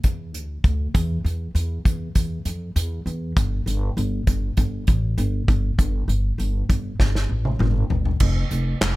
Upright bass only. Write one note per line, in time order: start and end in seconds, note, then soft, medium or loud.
0.04 0.34 E2 medium
0.34 0.59 D2 medium
0.64 0.89 D2 medium
0.94 1.19 E2 loud
1.24 1.50 E2 medium
1.55 1.80 E2 medium
1.85 2.10 E2 medium
2.15 2.40 E2 medium
2.45 2.70 F2 medium
2.76 3.01 E2 medium
3.06 3.31 E2 medium
3.36 3.61 G1 medium
3.66 3.91 G1 medium
3.97 4.22 G1 medium
4.27 4.52 G1 medium
4.57 4.82 G1 medium
4.88 5.13 A1 medium
5.18 5.43 G1 medium
5.48 5.73 G1 medium
5.78 6.03 G1 medium
6.08 6.33 G1 medium
6.38 6.63 G1 medium
6.69 6.94 G1 medium
7.00 7.25 G1 medium
7.29 7.54 A1 medium
7.59 7.85 G1 medium
7.90 8.15 G1 medium
8.20 8.45 F1 medium
8.51 8.76 F1 medium
8.81 8.96 F1 medium